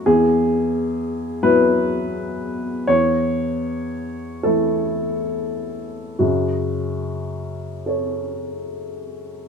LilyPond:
<<
  \new Staff \with { instrumentName = "Upright piano" } { \time 6/8 \key fis \minor \tempo 4. = 37 << { r2. | r2. | r4. <a' cis''>4. | } \\ { gis'4. b'4. | cis''4. a'8 r4 | fis'2. | } >> }
  \new Staff \with { instrumentName = "Upright piano" } { \clef bass \time 6/8 \key fis \minor e,4. <fis b e'>4. | e,4. <e a e'>4. | <fis, cis>2. | }
>>